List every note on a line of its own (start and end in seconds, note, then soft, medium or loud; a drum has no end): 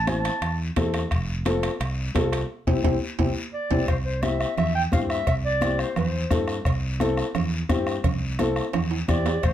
0.00 0.28 A1 loud
0.07 0.31 C4 medium
0.07 0.32 E4 medium
0.07 0.32 C5 medium
0.07 0.56 A5 medium
0.07 bombo rim medium
0.07 high conga medium
0.07 high timbale medium
0.07 short guiro medium
0.25 bombo rim medium
0.25 high timbale medium
0.25 short guiro medium
0.42 0.70 E2 medium
0.42 bombo rim medium
0.42 high conga soft
0.42 high timbale medium
0.42 long guiro medium
0.76 1.05 E2 medium
0.76 1.01 C4 medium
0.76 1.01 E4 medium
0.76 1.01 A4 medium
0.76 bombo low medium
0.76 bombo rim medium
0.76 high conga medium
0.76 high timbale medium
0.76 low timbale medium
0.76 short guiro medium
0.94 bombo rim medium
0.94 high timbale medium
0.94 short guiro medium
1.11 1.67 F1 medium
1.11 bombo low medium
1.11 bombo rim medium
1.11 high conga soft
1.11 high timbale medium
1.11 long guiro medium
1.45 1.70 C4 medium
1.45 1.70 F4 medium
1.45 1.71 A4 medium
1.45 bombo rim medium
1.45 high conga medium
1.45 high timbale medium
1.45 short guiro medium
1.63 bombo rim medium
1.63 high timbale medium
1.63 short guiro medium
1.80 2.08 C2 medium
1.80 bombo rim medium
1.80 high conga soft
1.80 high timbale medium
1.80 long guiro medium
2.15 2.43 C2 medium
2.15 2.39 C4 medium
2.15 2.39 F4 medium
2.15 2.40 A4 medium
2.15 bombo low medium
2.15 bombo rim medium
2.15 high conga medium
2.15 high timbale medium
2.15 low timbale medium
2.15 short guiro medium
2.33 bombo rim medium
2.33 high timbale medium
2.33 short guiro medium
2.67 2.80 C2 medium
2.67 2.78 C4 medium
2.67 2.78 E4 medium
2.67 2.78 G4 medium
2.67 bombo low loud
2.67 high conga medium
2.67 high timbale medium
2.67 long guiro medium
2.84 2.98 C2 medium
2.84 2.95 C4 medium
2.84 2.95 E4 medium
2.84 2.95 G4 medium
2.84 bombo low medium
2.84 high conga medium
2.84 high timbale medium
2.84 long guiro medium
3.19 3.32 C2 medium
3.19 3.30 C4 medium
3.19 3.30 E4 medium
3.19 3.30 G4 medium
3.19 bombo low medium
3.19 high conga medium
3.19 high timbale loud
3.19 long guiro medium
3.54 3.86 D5 medium
3.71 3.84 C2 medium
3.71 3.83 C4 medium
3.71 3.82 E4 medium
3.71 3.83 G4 medium
3.71 bombo low medium
3.71 high conga medium
3.71 high timbale medium
3.71 long guiro medium
3.88 4.44 C2 medium
3.88 3.96 C5 medium
3.88 bombo low medium
3.88 bombo rim medium
3.88 cowbell loud
3.88 high conga soft
3.88 long guiro medium
4.05 4.24 C5 medium
4.22 4.47 C4 medium
4.22 4.48 E4 medium
4.22 4.48 G4 medium
4.22 4.39 E5 medium
4.22 bombo rim medium
4.22 cowbell medium
4.22 high conga medium
4.22 short guiro medium
4.40 4.56 E5 medium
4.40 bombo rim medium
4.40 short guiro medium
4.57 4.85 E2 medium
4.57 4.74 E5 medium
4.57 bombo rim medium
4.57 cowbell medium
4.57 high conga soft
4.57 low conga medium
4.57 long guiro medium
4.75 4.83 G5 loud
4.92 5.20 G2 medium
4.92 5.17 C4 medium
4.92 5.17 E4 medium
4.92 5.17 G4 medium
4.92 5.00 F5 medium
4.92 bombo low medium
4.92 bombo rim medium
4.92 cowbell medium
4.92 high conga medium
4.92 short guiro medium
5.10 5.26 E5 loud
5.10 bombo rim medium
5.10 short guiro medium
5.27 5.83 C2 medium
5.27 5.35 E5 medium
5.27 bombo low medium
5.27 bombo rim medium
5.27 cowbell loud
5.27 high conga soft
5.27 long guiro medium
5.45 5.81 D5 medium
5.61 5.86 C4 medium
5.61 5.86 E4 medium
5.61 5.86 G4 medium
5.61 bombo rim medium
5.61 cowbell medium
5.61 high conga medium
5.61 short guiro medium
5.79 5.97 C5 medium
5.79 bombo rim medium
5.79 short guiro medium
5.96 6.24 E2 medium
5.96 6.45 C5 medium
5.96 bombo rim medium
5.96 cowbell medium
5.96 high conga soft
5.96 low conga medium
5.96 long guiro medium
6.30 6.59 G2 medium
6.30 6.55 C4 medium
6.30 6.55 E4 medium
6.30 6.55 A4 medium
6.30 bombo low medium
6.30 bombo rim medium
6.30 cowbell medium
6.30 high conga medium
6.30 short guiro medium
6.48 bombo rim medium
6.48 short guiro medium
6.65 7.21 C2 medium
6.65 bombo low medium
6.65 bombo rim medium
6.65 cowbell loud
6.65 high conga soft
6.65 long guiro medium
7.00 7.24 C4 medium
7.00 7.24 E4 medium
7.00 7.25 A4 loud
7.00 bombo rim medium
7.00 cowbell medium
7.00 high conga medium
7.00 short guiro medium
7.17 bombo rim medium
7.17 short guiro medium
7.35 7.63 E2 medium
7.35 bombo rim medium
7.35 cowbell medium
7.35 high conga soft
7.35 low conga medium
7.35 long guiro medium
7.69 7.97 G2 medium
7.69 7.94 C4 medium
7.69 7.94 E4 medium
7.69 7.94 G4 loud
7.69 bombo low medium
7.69 bombo rim medium
7.69 cowbell medium
7.69 high conga medium
7.69 short guiro medium
7.87 bombo rim medium
7.87 short guiro medium
8.04 8.60 C2 medium
8.04 bombo low medium
8.04 bombo rim medium
8.04 cowbell loud
8.04 high conga soft
8.04 low conga medium
8.04 long guiro medium
8.39 8.63 C4 medium
8.39 8.64 E4 medium
8.39 8.64 A4 medium
8.39 bombo rim medium
8.39 cowbell medium
8.39 high conga medium
8.39 short guiro medium
8.56 bombo rim medium
8.56 short guiro medium
8.73 9.02 E2 medium
8.73 bombo rim medium
8.73 cowbell medium
8.73 high conga soft
8.73 low conga medium
8.73 high timbale medium
8.73 long guiro medium
8.91 high timbale medium
9.08 9.36 E2 medium
9.08 9.33 C4 medium
9.08 9.33 E4 medium
9.08 9.33 G4 medium
9.08 9.41 D5 medium
9.08 bombo low medium
9.08 bombo rim medium
9.08 cowbell medium
9.08 high conga medium
9.08 short guiro medium
9.26 bombo rim medium
9.26 low timbale medium
9.26 short guiro medium
9.43 9.53 A1 medium
9.43 9.52 C5 medium
9.43 bombo low medium
9.43 bombo rim medium
9.43 cowbell loud
9.43 high conga soft
9.43 long guiro medium